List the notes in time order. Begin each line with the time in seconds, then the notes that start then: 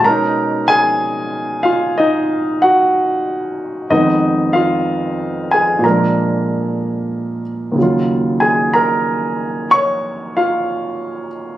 0.00 B2 G#3
0.04 C#4 A#4 A#5
0.09 D#4
0.68 G#4 G#5
1.63 F4 F5
1.98 D#4 D#5
2.62 F#4 F#5
3.90 F2 D#3 G#3 B3 D#4 D#5
4.53 F4 F5
5.51 G#4 G#5
5.79 A#2 F3
5.84 G#3 A#4 A#5
5.90 D4
7.72 D#2 C#3
7.79 F#3 F4
8.40 G#4 G#5
8.73 A#4 A#5
9.71 C#5 C#6
10.37 F4 F5